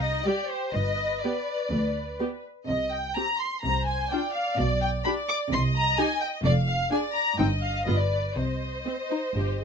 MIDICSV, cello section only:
0, 0, Header, 1, 2, 480
1, 0, Start_track
1, 0, Key_signature, -3, "minor"
1, 0, Tempo, 481928
1, 744, Time_signature, 4, 2, 24, 8
1, 3636, Tempo, 467290
1, 7476, Tempo, 493016
1, 9669, End_track
2, 0, Start_track
2, 0, Title_t, "Cello section"
2, 0, Program_c, 0, 48
2, 0, Note_on_c, 0, 48, 56
2, 172, Note_off_c, 0, 48, 0
2, 740, Note_on_c, 0, 43, 47
2, 1126, Note_off_c, 0, 43, 0
2, 1709, Note_on_c, 0, 38, 44
2, 2091, Note_off_c, 0, 38, 0
2, 2676, Note_on_c, 0, 48, 45
2, 3057, Note_off_c, 0, 48, 0
2, 3633, Note_on_c, 0, 48, 45
2, 4015, Note_off_c, 0, 48, 0
2, 4594, Note_on_c, 0, 47, 57
2, 4977, Note_off_c, 0, 47, 0
2, 5553, Note_on_c, 0, 48, 62
2, 5933, Note_off_c, 0, 48, 0
2, 6504, Note_on_c, 0, 41, 64
2, 6887, Note_off_c, 0, 41, 0
2, 7482, Note_on_c, 0, 43, 54
2, 7849, Note_off_c, 0, 43, 0
2, 7942, Note_on_c, 0, 43, 43
2, 8321, Note_off_c, 0, 43, 0
2, 8418, Note_on_c, 0, 48, 39
2, 8804, Note_off_c, 0, 48, 0
2, 9393, Note_on_c, 0, 43, 37
2, 9669, Note_off_c, 0, 43, 0
2, 9669, End_track
0, 0, End_of_file